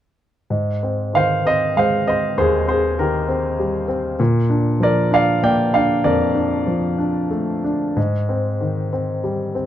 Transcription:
0.50 2.34 G#2 soft
0.83 1.44 C4 soft
1.14 2.34 D#3 soft
1.14 1.45 C5 medium
1.14 1.47 F5 medium
1.45 2.05 C4 soft
1.45 1.76 C5 medium
1.45 1.78 D#5 medium
1.76 2.96 G#3 soft
1.76 2.06 C5 medium
1.76 2.05 F5 medium
2.07 2.66 C4 soft
2.07 2.36 C5 medium
2.07 2.39 D#5 medium
2.37 4.15 D#2 medium
2.37 2.68 G#4 medium
2.37 2.67 C5 medium
2.68 3.27 C4 soft
2.68 2.98 G#4 medium
2.68 3.00 C5 medium
2.99 4.15 D#3 soft
2.99 3.86 G4 soft
2.99 3.85 A#4 medium
3.29 3.87 C4 soft
3.59 4.18 G3 soft
3.88 4.18 C4 soft
4.20 6.01 A#2 medium
4.50 5.09 D4 soft
4.80 6.01 F3 soft
4.80 5.10 A#4 medium
4.80 5.13 D5 medium
5.11 5.73 D4 soft
5.11 5.42 D5 medium
5.11 5.42 F5 medium
5.43 6.65 A#3 soft
5.43 5.73 D5 medium
5.43 5.76 G5 medium
5.74 6.33 D4 soft
5.74 6.03 D5 medium
5.74 6.06 F5 medium
6.04 7.93 F2 medium
6.04 7.29 A#4 medium
6.04 7.28 D5 medium
6.35 6.97 D4 soft
6.67 7.93 F3 soft
6.98 7.63 D4 soft
7.31 7.94 A3 soft
7.64 7.96 D4 soft
7.96 9.66 G#2 medium
8.29 8.91 C4 soft
8.61 9.66 D#3 soft
8.93 9.53 C4 soft
9.24 9.66 G3 soft
9.55 9.66 C4 soft

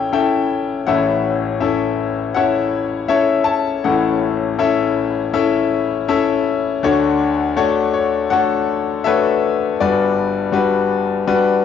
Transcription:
0.00 0.83 A1 soft
0.00 0.83 A2 soft
0.00 0.12 C#4 medium
0.00 0.13 E4 medium
0.00 0.13 A4 medium
0.00 0.88 C#5 medium
0.00 0.13 E5 medium
0.00 0.12 G5 medium
0.12 0.78 C#4 medium
0.12 0.78 E4 medium
0.12 0.78 A4 medium
0.12 0.79 E5 medium
0.12 0.89 G5 medium
0.87 3.80 A1 medium
0.87 3.80 A2 medium
0.87 1.53 C#4 medium
0.87 1.53 E4 soft
0.87 1.53 A4 medium
0.87 2.32 C#5 medium
0.87 1.53 E5 medium
0.87 1.63 F#5 medium
1.61 2.27 C#4 medium
1.61 2.27 E4 medium
1.61 2.27 A4 medium
1.61 2.31 E5 medium
2.35 3.02 C#4 medium
2.35 3.02 E4 medium
2.35 3.02 A4 medium
2.35 3.08 C#5 medium
2.35 3.02 E5 medium
2.35 3.12 F#5 medium
3.08 3.75 C#4 medium
3.08 3.75 E4 medium
3.08 3.75 A4 medium
3.08 3.43 C#5 medium
3.08 3.47 E5 medium
3.44 6.03 C#5 medium
3.44 6.02 A5 medium
3.84 6.78 A1 medium
3.84 6.78 A2 medium
3.84 4.50 C#4 medium
3.84 4.50 E4 medium
3.84 4.50 A4 medium
3.84 4.50 F#5 medium
4.58 5.25 C#4 medium
4.58 5.24 E4 medium
4.58 5.24 A4 medium
4.58 5.25 E5 medium
5.33 5.99 C#4 medium
5.33 6.00 E4 medium
5.33 5.99 A4 medium
5.33 5.99 E5 medium
6.08 6.74 C#4 medium
6.08 6.74 E4 medium
6.08 6.74 A4 medium
6.08 6.74 E5 medium
6.83 9.77 D2 medium
6.83 9.76 D3 medium
6.83 7.49 A3 medium
6.83 7.49 D4 medium
6.83 7.49 F#4 medium
6.83 7.49 C#5 medium
7.57 8.23 A3 medium
7.57 8.23 D4 medium
7.57 8.23 F#4 medium
7.57 7.92 C#5 medium
7.94 8.32 C#5 medium
8.30 8.97 A3 medium
8.30 8.97 D4 medium
8.30 8.98 F#4 medium
8.30 8.97 A4 medium
8.30 9.05 C#5 medium
8.30 9.07 F#5 medium
9.04 9.72 A3 medium
9.04 9.72 D4 medium
9.04 9.72 F#4 medium
9.04 9.76 A4 medium
9.04 9.72 B4 medium
9.04 9.76 C#5 medium
9.04 9.75 E5 medium
9.80 11.65 G1 medium
9.80 11.65 G2 medium
9.80 10.46 G3 medium
9.80 10.46 D4 medium
9.80 10.52 F#4 medium
9.80 10.46 B4 medium
9.80 10.87 D5 medium
10.52 11.19 G3 medium
10.52 11.19 D4 medium
10.52 11.19 F#4 medium
10.52 11.19 B4 medium
11.27 11.65 G3 medium
11.27 11.65 D4 medium
11.27 11.65 F#4 medium
11.27 11.65 B4 medium

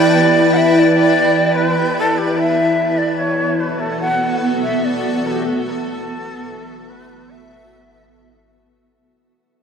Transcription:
0.00 9.05 E3 medium
0.00 3.73 E4 medium
0.00 4.15 B4 medium
0.00 0.55 D5 medium
0.00 2.38 G5 medium
0.00 3.83 A5 medium
0.53 0.74 E5 medium
0.53 0.58 F#5 medium
0.74 0.80 E5 loud
0.79 1.57 D5 loud
1.55 1.96 B4 medium
1.98 2.19 A4 medium
2.18 2.39 G4 medium
2.37 8.95 B3 medium
2.37 2.99 E5 medium
2.68 8.95 F#4 medium
2.80 8.95 A4 medium
2.98 3.20 D5 medium
3.18 3.61 C#5 medium
3.60 3.81 B4 medium
3.80 4.00 A4 medium
4.01 4.34 F#5 loud
4.63 4.86 E5 medium
4.84 5.27 D5 medium
5.26 5.32 A4 medium
5.31 5.48 G4 medium
5.31 8.94 E5 medium
5.46 5.65 F#4 medium
5.66 5.71 B4 medium
5.70 6.91 A4 medium
6.89 7.31 B4 medium
7.30 8.54 E5 medium

